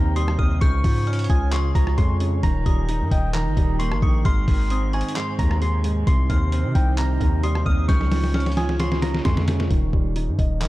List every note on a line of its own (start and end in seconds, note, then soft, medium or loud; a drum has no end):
0.00 0.37 D#2 loud
0.00 0.39 C3 medium
0.00 0.63 D#3 medium
0.00 0.39 C4 loud
0.00 0.57 D#4 medium
0.00 0.62 D#4 loud
0.00 0.58 C5 medium
0.00 0.60 G5 medium
0.00 0.13 A#5 medium
0.00 0.12 F6 medium
0.16 0.62 G3 medium
0.16 0.34 C6 medium
0.16 0.38 D#6 medium
0.16 closed hi-hat medium
0.28 cross-stick loud
0.39 0.61 D#2 loud
0.39 0.62 C3 medium
0.39 0.57 D#6 medium
0.39 0.60 F6 medium
0.39 kick loud
0.61 0.83 C#2 loud
0.61 1.51 C#3 medium
0.61 2.42 F4 medium
0.61 2.42 C#5 medium
0.61 2.41 G#5 loud
0.61 1.25 C#6 loud
0.61 1.05 G6 loud
0.61 kick loud
0.61 closed hi-hat medium
0.84 1.28 G#2 loud
0.84 1.74 F3 medium
0.84 kick loud
0.84 open hi-hat medium
1.07 2.21 C#4 medium
1.07 1.29 F6 medium
1.07 closed hi-hat soft
1.13 closed hi-hat medium
1.19 closed hi-hat medium
1.24 closed hi-hat medium
1.30 1.73 C#2 loud
1.30 2.43 F4 medium
1.30 1.48 G#5 medium
1.30 1.51 D#6 medium
1.30 kick medium
1.30 closed hi-hat medium
1.52 2.19 C#3 medium
1.52 1.71 C6 medium
1.52 2.39 C#6 medium
1.52 clap loud
1.52 closed hi-hat medium
1.75 1.97 C#2 loud
1.75 2.43 F3 medium
1.75 1.93 A#5 medium
1.75 kick medium
1.75 closed hi-hat medium
1.87 cross-stick loud
1.98 2.42 F2 loud
1.98 2.43 G#3 medium
1.98 2.16 C6 medium
1.98 kick medium
1.98 closed hi-hat medium
2.20 2.43 C#3 medium
2.20 closed hi-hat medium
2.43 2.65 D#1 loud
2.43 3.33 D#3 loud
2.43 6.03 D#4 medium
2.43 4.23 A#4 medium
2.43 4.23 G5 medium
2.43 3.07 A#5 loud
2.43 kick loud
2.43 closed hi-hat medium
2.66 3.02 D#1 loud
2.66 3.56 G3 medium
2.66 3.76 D#6 medium
2.66 kick loud
2.66 closed hi-hat medium
2.89 4.02 D#4 loud
2.89 closed hi-hat medium
3.01 3.11 G2 loud
3.11 3.48 D#1 loud
3.11 4.25 D#5 medium
3.11 3.30 G5 medium
3.11 kick medium
3.11 closed hi-hat medium
3.34 4.01 D#3 loud
3.34 3.77 A#5 medium
3.34 clap loud
3.34 closed hi-hat medium
3.46 3.56 G1 loud
3.57 3.93 D#1 loud
3.57 4.25 G3 medium
3.57 kick loud
3.57 closed hi-hat medium
3.79 4.25 A#3 medium
3.79 3.98 C6 medium
3.79 4.01 C#6 medium
3.79 closed hi-hat medium
3.92 4.02 G1 loud
3.92 cross-stick loud
4.02 4.24 A#1 loud
4.02 4.25 D#3 medium
4.02 4.21 C#6 medium
4.02 4.24 D#6 medium
4.02 kick loud
4.25 4.47 G#1 loud
4.25 5.15 G#2 loud
4.25 7.85 C5 medium
4.25 6.05 G#5 medium
4.25 4.89 C6 loud
4.25 4.68 F6 loud
4.25 kick loud
4.25 closed hi-hat medium
4.48 5.03 G#1 loud
4.48 5.37 D#3 medium
4.48 kick loud
4.48 open hi-hat medium
4.70 5.84 C4 loud
4.70 4.93 D#6 medium
4.70 closed hi-hat medium
4.93 6.07 D#4 medium
4.93 5.12 G#5 medium
4.93 5.15 C#6 medium
4.93 closed hi-hat soft
5.01 closed hi-hat medium
5.09 closed hi-hat medium
5.16 5.83 G#2 medium
5.16 6.03 C6 medium
5.16 5.35 C6 medium
5.16 clap loud
5.16 closed hi-hat medium
5.39 6.04 D#2 loud
5.39 6.07 D#3 medium
5.39 5.57 A#5 medium
5.39 kick medium
5.39 closed hi-hat medium
5.51 cross-stick loud
5.62 6.07 G#3 medium
5.62 5.80 C6 medium
5.62 closed hi-hat medium
5.84 6.07 G#2 medium
5.84 closed hi-hat medium
6.07 6.29 C2 loud
6.07 6.97 C3 medium
6.07 7.87 D#4 medium
6.07 7.87 G5 medium
6.07 6.71 C6 loud
6.07 kick loud
6.07 closed hi-hat medium
6.30 6.66 D#2 loud
6.30 7.19 D#3 medium
6.30 7.39 F6 medium
6.30 kick loud
6.30 closed hi-hat medium
6.52 7.66 C4 medium
6.52 closed hi-hat medium
6.64 6.75 C3 loud
6.75 7.19 C2 loud
6.75 7.89 D#4 loud
6.75 6.93 G5 medium
6.75 kick medium
6.75 closed hi-hat medium
6.98 7.64 C3 medium
6.98 7.41 A#5 medium
6.98 clap loud
6.98 closed hi-hat medium
7.20 7.64 D#2 loud
7.20 7.89 D#3 medium
7.20 kick medium
7.20 closed hi-hat medium
7.43 7.89 G3 medium
7.43 7.62 C6 loud
7.43 7.65 D#6 medium
7.43 closed hi-hat medium
7.55 cross-stick medium
7.66 7.88 D#2 loud
7.66 7.89 C3 medium
7.66 7.84 D#6 medium
7.66 7.88 F6 medium
7.66 kick loud
7.88 9.21 C#2 loud
7.88 8.78 C#3 medium
7.88 9.69 F4 medium
7.88 9.69 C#5 medium
7.88 9.69 G#5 medium
7.88 8.53 C#6 loud
7.88 8.32 G6 loud
7.88 kick loud
7.88 snare medium
7.88 closed hi-hat medium
8.01 snare medium
8.11 9.01 F3 medium
8.11 snare medium
8.11 open hi-hat medium
8.24 snare medium
8.34 9.48 C#4 medium
8.34 8.56 F6 medium
8.34 snare medium
8.34 closed hi-hat soft
8.40 closed hi-hat medium
8.46 snare medium
8.46 closed hi-hat medium
8.52 closed hi-hat medium
8.57 9.70 F4 medium
8.57 8.75 G#5 medium
8.57 8.79 D#6 medium
8.57 snare medium
8.57 closed hi-hat medium
8.69 snare medium
8.79 9.46 C#3 medium
8.79 8.98 C6 medium
8.79 9.67 C#6 medium
8.79 snare medium
8.79 closed hi-hat medium
8.92 snare medium
9.02 9.71 F3 medium
9.02 9.21 A#5 medium
9.02 snare loud
9.02 closed hi-hat medium
9.14 snare medium
9.25 9.69 F2 loud
9.25 9.71 G#3 medium
9.25 9.43 C6 medium
9.25 kick loud
9.25 snare loud
9.25 closed hi-hat medium
9.37 snare medium
9.48 9.71 C#3 medium
9.48 snare loud
9.48 closed hi-hat medium
9.60 snare loud
9.70 9.92 D#1 loud
9.70 10.60 D#3 medium
9.70 kick loud
9.70 closed hi-hat medium
9.93 10.29 D#1 loud
9.93 10.68 G3 medium
9.93 kick medium
10.16 10.68 D#4 medium
10.16 closed hi-hat medium
10.28 10.38 G2 loud
10.39 10.68 D#1 loud
10.39 10.68 D#5 medium
10.39 kick medium
10.39 closed hi-hat medium
10.61 10.68 D#3 loud
10.61 clap loud
10.61 closed hi-hat medium